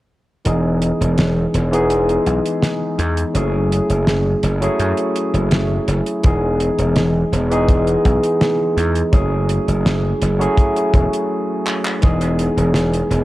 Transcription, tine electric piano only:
0, 0, Header, 1, 2, 480
1, 0, Start_track
1, 0, Key_signature, 4, "major"
1, 0, Tempo, 722892
1, 305, Time_signature, 4, 2, 24, 8
1, 8791, End_track
2, 0, Start_track
2, 0, Title_t, "Tine electric piano"
2, 0, Program_c, 0, 4
2, 297, Note_on_c, 0, 52, 78
2, 302, Note_on_c, 0, 56, 73
2, 305, Note_on_c, 0, 59, 68
2, 311, Note_on_c, 0, 63, 71
2, 315, Note_on_c, 0, 68, 86
2, 417, Control_c, 0, 64, 127
2, 1115, Note_off_c, 0, 52, 0
2, 1117, Note_off_c, 0, 56, 0
2, 1119, Note_off_c, 0, 59, 0
2, 1122, Note_off_c, 0, 63, 0
2, 1124, Note_off_c, 0, 68, 0
2, 1139, Note_on_c, 0, 52, 92
2, 1143, Note_on_c, 0, 56, 85
2, 1148, Note_on_c, 0, 59, 82
2, 1153, Note_on_c, 0, 63, 84
2, 1158, Note_on_c, 0, 68, 102
2, 2192, Note_off_c, 0, 52, 0
2, 2194, Note_off_c, 0, 56, 0
2, 2197, Note_off_c, 0, 59, 0
2, 2199, Note_off_c, 0, 63, 0
2, 2201, Note_off_c, 0, 68, 0
2, 2215, Note_on_c, 0, 54, 78
2, 2220, Note_on_c, 0, 57, 71
2, 2225, Note_on_c, 0, 61, 70
2, 2230, Note_on_c, 0, 64, 71
2, 2235, Control_c, 0, 64, 0
2, 2235, Note_on_c, 0, 68, 85
2, 2341, Control_c, 0, 64, 127
2, 3034, Note_off_c, 0, 54, 0
2, 3037, Note_off_c, 0, 57, 0
2, 3039, Note_off_c, 0, 61, 0
2, 3042, Note_off_c, 0, 64, 0
2, 3044, Note_off_c, 0, 68, 0
2, 3059, Note_on_c, 0, 54, 92
2, 3063, Note_on_c, 0, 57, 86
2, 3069, Note_on_c, 0, 61, 85
2, 3074, Note_on_c, 0, 64, 85
2, 3078, Note_on_c, 0, 68, 103
2, 4112, Note_off_c, 0, 54, 0
2, 4114, Note_off_c, 0, 57, 0
2, 4117, Note_off_c, 0, 61, 0
2, 4119, Note_off_c, 0, 64, 0
2, 4122, Note_off_c, 0, 68, 0
2, 4136, Note_on_c, 0, 52, 78
2, 4141, Note_on_c, 0, 56, 73
2, 4146, Note_on_c, 0, 59, 70
2, 4151, Note_on_c, 0, 63, 73
2, 4153, Control_c, 0, 64, 0
2, 4156, Note_on_c, 0, 68, 88
2, 4266, Control_c, 0, 64, 127
2, 4955, Note_off_c, 0, 52, 0
2, 4957, Note_off_c, 0, 56, 0
2, 4960, Note_off_c, 0, 59, 0
2, 4962, Note_off_c, 0, 63, 0
2, 4965, Note_off_c, 0, 68, 0
2, 4978, Note_on_c, 0, 52, 97
2, 4983, Note_on_c, 0, 56, 85
2, 4987, Note_on_c, 0, 59, 87
2, 4993, Note_on_c, 0, 63, 88
2, 4997, Note_on_c, 0, 68, 102
2, 6031, Note_off_c, 0, 52, 0
2, 6034, Note_off_c, 0, 56, 0
2, 6036, Note_off_c, 0, 59, 0
2, 6039, Note_off_c, 0, 63, 0
2, 6041, Note_off_c, 0, 68, 0
2, 6053, Note_on_c, 0, 54, 80
2, 6057, Note_on_c, 0, 57, 71
2, 6063, Note_on_c, 0, 61, 73
2, 6067, Note_on_c, 0, 64, 74
2, 6074, Note_on_c, 0, 68, 90
2, 6075, Control_c, 0, 64, 0
2, 6189, Control_c, 0, 64, 127
2, 6873, Note_off_c, 0, 54, 0
2, 6875, Note_off_c, 0, 57, 0
2, 6878, Note_off_c, 0, 61, 0
2, 6880, Note_off_c, 0, 64, 0
2, 6884, Note_off_c, 0, 68, 0
2, 6895, Note_on_c, 0, 54, 97
2, 6900, Note_on_c, 0, 57, 87
2, 6905, Note_on_c, 0, 61, 90
2, 6910, Note_on_c, 0, 64, 86
2, 6917, Note_on_c, 0, 68, 105
2, 7950, Note_off_c, 0, 54, 0
2, 7953, Note_off_c, 0, 57, 0
2, 7955, Note_off_c, 0, 61, 0
2, 7958, Note_off_c, 0, 64, 0
2, 7961, Note_off_c, 0, 68, 0
2, 7976, Note_on_c, 0, 52, 82
2, 7980, Note_on_c, 0, 56, 71
2, 7986, Note_on_c, 0, 59, 75
2, 7991, Note_on_c, 0, 63, 73
2, 7992, Control_c, 0, 64, 0
2, 7995, Note_on_c, 0, 68, 89
2, 8094, Control_c, 0, 64, 127
2, 8791, Note_off_c, 0, 52, 0
2, 8791, Note_off_c, 0, 56, 0
2, 8791, Note_off_c, 0, 59, 0
2, 8791, Note_off_c, 0, 63, 0
2, 8791, Note_off_c, 0, 68, 0
2, 8791, End_track
0, 0, End_of_file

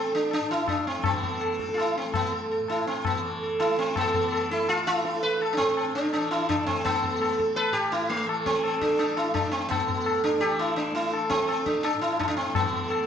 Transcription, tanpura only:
0, 0, Header, 1, 2, 480
1, 0, Start_track
1, 0, Tempo, 363636
1, 1382, Time_signature, 4, 2, 24, 8
1, 8569, Tempo, 355661
1, 17442, End_track
2, 0, Start_track
2, 0, Title_t, "Tanpura"
2, 0, Program_c, 0, 104
2, 0, Note_on_c, 0, 45, 59
2, 0, Note_on_c, 0, 52, 58
2, 0, Note_on_c, 0, 57, 58
2, 529, Note_off_c, 0, 45, 0
2, 534, Note_on_c, 0, 45, 59
2, 1283, Note_off_c, 0, 52, 0
2, 1289, Note_on_c, 0, 52, 58
2, 1992, Note_off_c, 0, 57, 0
2, 1992, Note_on_c, 0, 57, 59
2, 2712, Note_off_c, 0, 57, 0
2, 2712, Note_on_c, 0, 57, 63
2, 3425, Note_off_c, 0, 45, 0
2, 3431, Note_on_c, 0, 45, 60
2, 4156, Note_off_c, 0, 52, 0
2, 4161, Note_on_c, 0, 52, 66
2, 4871, Note_off_c, 0, 57, 0
2, 4871, Note_on_c, 0, 57, 59
2, 5234, Note_off_c, 0, 52, 0
2, 5234, Note_on_c, 0, 52, 58
2, 5957, Note_off_c, 0, 57, 0
2, 5957, Note_on_c, 0, 57, 66
2, 6643, Note_off_c, 0, 57, 0
2, 6643, Note_on_c, 0, 57, 72
2, 7363, Note_off_c, 0, 45, 0
2, 7368, Note_on_c, 0, 45, 68
2, 8073, Note_off_c, 0, 52, 0
2, 8073, Note_on_c, 0, 52, 61
2, 8763, Note_off_c, 0, 57, 0
2, 8768, Note_on_c, 0, 57, 65
2, 9503, Note_off_c, 0, 57, 0
2, 9503, Note_on_c, 0, 57, 66
2, 10206, Note_off_c, 0, 45, 0
2, 10211, Note_on_c, 0, 45, 74
2, 10925, Note_off_c, 0, 52, 0
2, 10931, Note_on_c, 0, 52, 68
2, 11663, Note_off_c, 0, 57, 0
2, 11663, Note_on_c, 0, 57, 62
2, 12369, Note_off_c, 0, 57, 0
2, 12369, Note_on_c, 0, 57, 65
2, 13077, Note_off_c, 0, 45, 0
2, 13082, Note_on_c, 0, 45, 61
2, 13809, Note_off_c, 0, 52, 0
2, 13814, Note_on_c, 0, 52, 64
2, 14538, Note_off_c, 0, 57, 0
2, 14538, Note_on_c, 0, 57, 66
2, 15221, Note_off_c, 0, 57, 0
2, 15221, Note_on_c, 0, 57, 69
2, 15924, Note_off_c, 0, 45, 0
2, 15929, Note_on_c, 0, 45, 64
2, 16647, Note_off_c, 0, 52, 0
2, 16652, Note_on_c, 0, 52, 70
2, 17348, Note_off_c, 0, 57, 0
2, 17348, Note_on_c, 0, 57, 67
2, 17442, Note_off_c, 0, 45, 0
2, 17442, Note_off_c, 0, 52, 0
2, 17442, Note_off_c, 0, 57, 0
2, 17442, End_track
0, 0, End_of_file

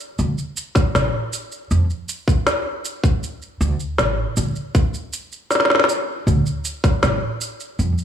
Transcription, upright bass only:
0, 0, Header, 1, 2, 480
1, 0, Start_track
1, 0, Key_signature, -1, "minor"
1, 0, Tempo, 759494
1, 1079, Time_signature, 4, 2, 24, 8
1, 5083, End_track
2, 0, Start_track
2, 0, Title_t, "Upright bass"
2, 0, Program_c, 0, 32
2, 119, Note_on_c, 0, 38, 91
2, 199, Note_off_c, 0, 38, 0
2, 601, Note_on_c, 0, 33, 93
2, 680, Note_off_c, 0, 33, 0
2, 1080, Note_on_c, 0, 41, 85
2, 1160, Note_off_c, 0, 41, 0
2, 2280, Note_on_c, 0, 38, 92
2, 2359, Note_off_c, 0, 38, 0
2, 2522, Note_on_c, 0, 33, 73
2, 2680, Note_off_c, 0, 33, 0
2, 2762, Note_on_c, 0, 38, 88
2, 2840, Note_off_c, 0, 38, 0
2, 3961, Note_on_c, 0, 38, 92
2, 4040, Note_off_c, 0, 38, 0
2, 4447, Note_on_c, 0, 33, 91
2, 4523, Note_off_c, 0, 33, 0
2, 4923, Note_on_c, 0, 41, 80
2, 5001, Note_off_c, 0, 41, 0
2, 5083, End_track
0, 0, End_of_file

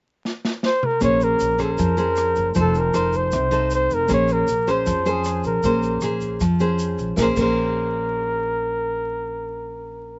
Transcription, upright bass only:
0, 0, Header, 1, 2, 480
1, 0, Start_track
1, 0, Key_signature, -5, "minor"
1, 0, Tempo, 385109
1, 1256, Time_signature, 4, 2, 24, 8
1, 12701, End_track
2, 0, Start_track
2, 0, Title_t, "Upright bass"
2, 0, Program_c, 0, 32
2, 1269, Note_on_c, 0, 34, 93
2, 1712, Note_off_c, 0, 34, 0
2, 1747, Note_on_c, 0, 34, 72
2, 2192, Note_off_c, 0, 34, 0
2, 2231, Note_on_c, 0, 41, 94
2, 2899, Note_off_c, 0, 41, 0
2, 2951, Note_on_c, 0, 30, 73
2, 3172, Note_off_c, 0, 30, 0
2, 3191, Note_on_c, 0, 29, 99
2, 3636, Note_off_c, 0, 29, 0
2, 3673, Note_on_c, 0, 29, 69
2, 4117, Note_off_c, 0, 29, 0
2, 4149, Note_on_c, 0, 36, 96
2, 4819, Note_off_c, 0, 36, 0
2, 4871, Note_on_c, 0, 29, 74
2, 5093, Note_off_c, 0, 29, 0
2, 5105, Note_on_c, 0, 34, 99
2, 5553, Note_off_c, 0, 34, 0
2, 5589, Note_on_c, 0, 34, 72
2, 6034, Note_off_c, 0, 34, 0
2, 6069, Note_on_c, 0, 41, 97
2, 6737, Note_off_c, 0, 41, 0
2, 6784, Note_on_c, 0, 34, 83
2, 7007, Note_off_c, 0, 34, 0
2, 7025, Note_on_c, 0, 34, 99
2, 7471, Note_off_c, 0, 34, 0
2, 7499, Note_on_c, 0, 34, 78
2, 7946, Note_off_c, 0, 34, 0
2, 7985, Note_on_c, 0, 41, 85
2, 8651, Note_off_c, 0, 41, 0
2, 8705, Note_on_c, 0, 34, 78
2, 8925, Note_off_c, 0, 34, 0
2, 8945, Note_on_c, 0, 34, 85
2, 9076, Note_off_c, 0, 34, 0
2, 9182, Note_on_c, 0, 34, 89
2, 12701, Note_off_c, 0, 34, 0
2, 12701, End_track
0, 0, End_of_file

